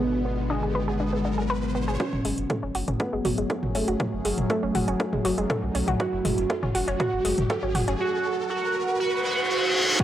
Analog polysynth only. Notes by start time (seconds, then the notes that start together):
Already playing: B3
0.50 G#3
2.00 C#4
3.00 B3
3.75 A3
4.50 A3
6.00 F#4
7.00 F#4
8.00 F#4
8.50 F#4
9.00 F#4
9.25 F#4
9.50 F#4
9.75 F#4
10.00 C#4